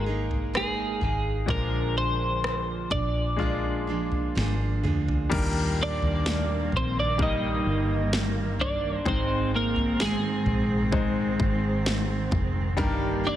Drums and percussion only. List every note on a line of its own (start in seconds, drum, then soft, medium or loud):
0.31 floor tom medium
0.55 cross-stick loud
1.01 floor tom soft
1.48 kick loud
1.48 floor tom loud
2.44 cross-stick loud
2.90 kick medium
2.90 floor tom medium
3.39 floor tom medium
4.12 floor tom medium
4.38 snare medium
4.85 mid tom medium
5.08 floor tom medium
5.32 kick loud
5.32 floor tom loud
5.32 crash loud
6.02 floor tom medium
6.26 snare loud
6.72 floor tom medium
7.19 kick loud
7.19 floor tom medium
8.13 snare loud
8.59 floor tom medium
9.06 kick loud
9.06 floor tom loud
9.76 floor tom medium
10.00 snare loud
10.46 floor tom medium
10.92 kick loud
10.92 floor tom medium
11.40 kick loud
11.86 snare loud
12.31 kick medium
12.31 floor tom medium
12.78 kick loud
12.78 floor tom loud